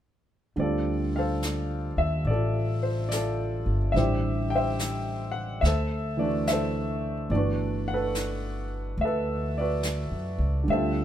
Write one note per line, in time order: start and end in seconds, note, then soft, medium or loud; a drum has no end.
0.56 1.95 D2 medium
0.56 3.93 D3 soft
0.56 3.94 G3 soft
0.56 3.95 C4 soft
0.56 2.30 F4 soft
0.56 1.17 D5 medium
0.56 brush sweep soft
0.61 1.17 A4 soft
1.16 2.29 A4 soft
1.16 2.81 C5 soft
1.16 2.01 F5 medium
1.42 snare soft
1.42 hi-hat pedal soft
1.97 2.23 D#2 soft
1.97 2.24 E5 medium
2.25 3.63 A1 medium
2.25 2.80 D5 medium
2.25 brush sweep soft
2.31 3.12 F4 soft
2.31 3.12 A4 soft
2.83 3.08 C5 medium
3.09 3.76 D5 medium
3.09 snare soft
3.09 hi-hat pedal soft
3.13 3.92 F4 soft
3.13 3.92 A4 soft
3.66 3.92 G1 soft
3.92 5.58 A1 medium
3.92 5.63 D3 soft
3.92 5.63 G3 soft
3.92 4.52 E5 medium
3.92 brush sweep soft
3.92 snare soft
3.96 5.63 C4 soft
3.96 5.63 E4 soft
3.96 5.60 G4 medium
3.96 4.54 C5 soft
4.50 5.30 G5 medium
4.55 5.61 C5 medium
4.55 5.60 E5 medium
4.79 snare soft
4.79 hi-hat pedal soft
5.32 5.62 F#5 medium
5.61 7.26 D2 medium
5.61 6.20 E5 medium
5.61 brush sweep soft
5.61 snare soft
5.66 6.52 A4 soft
5.66 6.51 C5 soft
6.17 7.29 E3 soft
6.17 7.30 A3 soft
6.17 7.31 D4 soft
6.17 6.47 D5 medium
6.22 7.32 F#4 soft
6.47 7.13 E5 medium
6.47 snare soft
6.47 hi-hat pedal medium
6.52 7.30 A4 soft
6.52 7.29 C5 medium
7.30 8.95 G1 medium
7.30 10.68 E3 soft
7.30 10.69 A3 soft
7.30 7.84 D5 medium
7.30 brush sweep soft
7.34 10.70 D4 soft
7.34 9.59 F#4 soft
7.34 7.93 B4 soft
7.88 8.95 F#5 medium
7.94 9.03 A4 medium
7.94 9.04 B4 medium
8.15 snare soft
8.15 hi-hat pedal soft
8.98 10.07 D2 medium
8.98 9.53 E5 medium
8.98 brush sweep soft
9.05 10.67 A4 soft
9.05 9.59 B4 soft
9.58 10.66 F#4 soft
9.58 10.66 B4 soft
9.58 10.37 D5 medium
9.83 snare soft
9.83 hi-hat pedal medium
10.11 10.37 F#2 soft
10.38 10.65 C#2 medium
10.64 11.04 D3 soft
10.64 11.04 G3 soft
10.68 11.04 D2 medium
10.68 11.04 C4 soft
10.68 11.04 E5 medium
10.68 brush sweep soft
10.72 11.04 F4 soft
10.72 11.04 A4 soft
10.72 11.04 C5 medium